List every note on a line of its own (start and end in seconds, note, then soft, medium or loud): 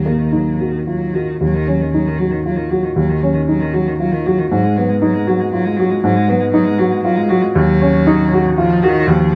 0.00 1.38 D#2 soft
0.06 0.34 D#3 soft
0.06 0.49 A#3 soft
0.32 0.61 F#3 soft
0.32 0.76 D#4 soft
0.59 0.87 D#3 soft
0.59 1.04 F#4 soft
0.87 1.16 F#3 soft
0.87 1.15 F4 soft
1.14 1.41 D#3 soft
1.14 1.41 F#4 soft
1.41 2.93 D#2 medium
1.41 1.56 F#3 soft
1.54 1.69 D#3 soft
1.67 1.83 F#3 soft
1.67 2.09 C#4 soft
1.81 1.92 D#3 soft
1.93 2.08 F#3 soft
1.93 2.35 D#4 soft
2.07 2.19 D#3 soft
2.18 2.33 F#3 soft
2.18 2.61 F#4 soft
2.31 2.45 D#3 soft
2.45 2.58 F#3 soft
2.45 2.72 F4 soft
2.56 2.71 D#3 soft
2.70 2.85 F#3 soft
2.70 3.13 F#4 soft
2.83 2.96 D#3 soft
2.96 4.48 D#2 soft
2.96 3.11 F#3 soft
3.09 3.23 D#3 soft
3.21 3.35 F#3 soft
3.21 3.65 C#4 soft
3.34 3.47 D#3 soft
3.48 3.62 F#3 soft
3.48 3.90 D#4 soft
3.61 3.76 D#3 soft
3.74 3.89 F#3 medium
3.74 4.16 F#4 soft
3.87 3.98 D#3 soft
3.99 4.14 F#3 medium
3.99 4.26 F4 soft
4.12 4.27 D#3 soft
4.26 4.40 F#3 medium
4.26 4.52 F#4 soft
4.39 4.50 D#3 soft
4.50 5.99 G#2 medium
4.50 4.65 F#3 medium
4.64 4.78 G#3 soft
4.76 4.91 F#3 medium
4.76 5.18 B3 medium
4.89 5.01 G#3 medium
5.02 5.15 F#3 medium
5.02 5.43 D#4 medium
5.14 5.29 G#3 medium
5.27 5.42 F#3 medium
5.27 5.68 F#4 medium
5.40 5.52 G#3 soft
5.52 5.67 F#3 medium
5.52 5.78 F4 soft
5.65 5.79 G#3 medium
5.77 5.92 F#3 medium
5.77 6.19 F#4 medium
5.90 6.03 G#3 medium
6.03 7.52 G#2 medium
6.03 6.18 F#3 medium
6.16 6.30 G#3 medium
6.28 6.42 F#3 medium
6.28 6.69 B3 medium
6.40 6.51 G#3 medium
6.52 6.67 F#3 medium
6.52 6.95 D#4 medium
6.65 6.80 G#3 medium
6.79 6.93 F#3 medium
6.79 7.20 F#4 medium
6.92 7.03 G#3 medium
7.03 7.18 F#3 medium
7.03 7.30 F4 medium
7.16 7.31 G#3 medium
7.29 7.44 F#3 medium
7.29 7.56 F#4 medium
7.42 7.54 G#3 medium
7.54 9.04 D#2 medium
7.54 8.53 F#3 medium
7.81 8.22 C#4 medium
8.07 8.48 D#4 medium
8.33 8.73 F#4 medium
8.57 8.85 F3 medium
8.57 8.83 F4 medium
8.83 9.09 D#3 loud
8.83 9.24 F#4 medium
9.08 9.35 D#2 medium
9.08 9.35 F3 medium